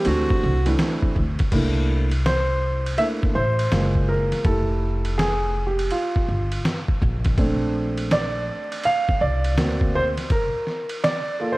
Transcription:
0.05 0.25 D2 medium
0.05 0.52 E3 medium
0.05 0.52 A3 medium
0.05 0.52 C4 medium
0.05 0.52 D4 medium
0.05 0.52 F#4 medium
0.05 0.80 F#4 medium
0.05 ride medium
0.30 muted upright bass stroke soft
0.30 kick loud
0.30 snare soft
0.43 0.72 C2 medium
0.65 1.18 E3 medium
0.65 1.18 A3 medium
0.65 1.18 C4 medium
0.65 1.19 D4 medium
0.65 1.19 E4 medium
0.65 ride medium
0.79 snare loud
0.79 hi-hat pedal soft
0.79 ride medium
1.02 kick medium
1.16 1.35 D2 medium
1.16 kick medium
1.39 kick medium
1.39 snare soft
1.39 ride soft
1.52 2.95 C2 loud
1.52 2.05 A3 medium
1.52 2.05 A#3 medium
1.52 2.05 D4 soft
1.52 2.06 E4 medium
1.52 kick medium
1.52 crash loud
1.52 ride medium
2.11 ride medium
2.26 3.01 C5 medium
2.26 snare loud
2.26 hi-hat pedal medium
2.26 ride medium
2.86 ride medium
2.97 3.31 A3 soft
2.97 3.31 A#3 soft
2.97 3.31 D4 soft
2.97 3.32 E4 medium
2.97 3.06 E5 loud
2.97 ride medium
3.23 muted upright bass stroke soft
3.23 kick loud
3.23 snare soft
3.35 3.65 A1 medium
3.35 4.10 C5 medium
3.59 ride medium
3.71 4.31 F#1 medium
3.71 4.41 G#3 medium
3.71 4.41 A#3 soft
3.71 4.42 F4 medium
3.71 snare loud
3.71 hi-hat pedal soft
3.71 ride medium
3.95 kick medium
4.09 4.46 A#4 medium
4.32 snare soft
4.32 ride medium
4.44 5.87 F1 loud
4.44 5.51 A3 medium
4.44 5.51 E4 medium
4.44 5.50 G4 medium
4.44 5.20 A4 medium
4.44 kick loud
4.44 ride medium
5.05 ride medium
5.18 5.63 G#4 medium
5.18 snare loud
5.18 hi-hat pedal soft
5.18 ride medium
5.67 5.92 G4 medium
5.79 ride medium
5.91 6.61 F4 medium
5.91 ride medium
6.16 muted upright bass stroke soft
6.16 kick medium
6.16 snare soft
6.28 6.58 G1 medium
6.52 ride medium
6.65 snare loud
6.65 hi-hat pedal soft
6.65 ride medium
6.88 kick medium
7.02 8.48 A#1 loud
7.02 kick medium
7.25 kick medium
7.25 snare soft
7.25 ride medium
7.38 9.53 A3 medium
7.38 9.54 C4 medium
7.38 9.54 D4 medium
7.38 kick loud
7.38 ride medium
7.98 ride medium
8.11 8.87 D5 loud
8.11 snare loud
8.11 hi-hat pedal soft
8.11 ride medium
8.72 ride medium
8.84 9.22 F5 loud
8.84 ride medium
9.09 muted upright bass stroke soft
9.09 kick loud
9.09 snare soft
9.21 9.57 C2 medium
9.21 9.96 D5 medium
9.44 ride medium
9.57 10.16 D2 medium
9.57 10.10 A#3 medium
9.57 10.11 C4 medium
9.57 10.11 F#4 medium
9.57 snare loud
9.57 hi-hat pedal soft
9.57 ride medium
9.81 kick medium
9.95 10.03 C5 loud
10.17 snare soft
10.17 ride medium
10.30 11.06 A#4 medium
10.30 kick loud
10.30 ride medium
10.67 snare soft
10.89 ride medium
11.04 11.54 D5 loud
11.04 snare loud
11.04 hi-hat pedal medium
11.04 ride medium
11.40 11.58 A#3 soft
11.40 11.58 F4 medium
11.40 11.58 A4 medium
11.52 11.58 C5 medium

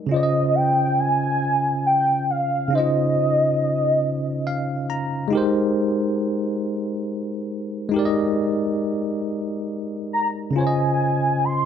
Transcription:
0.00 0.12 D#5 medium
0.07 2.65 C#3 medium
0.07 2.66 C#4 medium
0.11 2.67 F4 medium
0.11 2.69 C5 medium
0.11 0.57 D#5 loud
0.16 0.20 D5 medium
0.23 2.73 D#5 medium
0.55 1.01 G5 loud
1.00 1.85 G#5 loud
1.86 2.32 G5 loud
2.30 2.76 F5 medium
2.68 5.26 C#3 medium
2.68 5.27 C#4 medium
2.73 2.78 D#4 soft
2.73 5.30 C5 medium
2.73 4.90 D#5 loud
2.78 5.32 F4 medium
2.78 5.31 D#5 medium
4.47 4.86 F5 medium
4.90 5.29 A#5 medium
5.28 7.87 G#3 medium
5.28 7.88 D#4 medium
5.33 7.89 G4 medium
5.33 7.90 A#4 medium
5.37 7.91 C5 medium
7.89 10.48 G#3 medium
7.89 10.49 D#4 medium
7.94 10.50 G4 medium
7.94 10.51 A#4 medium
7.99 8.02 D5 medium
8.05 10.56 D#5 medium
10.13 10.27 A#5 medium
10.51 11.65 C#3 medium
10.51 11.65 C#4 medium
10.56 11.65 F4 medium
10.56 11.65 C5 medium
10.56 11.46 G#5 loud
10.60 10.63 C#5 medium
10.67 11.65 D#5 medium
11.45 11.65 C6 loud

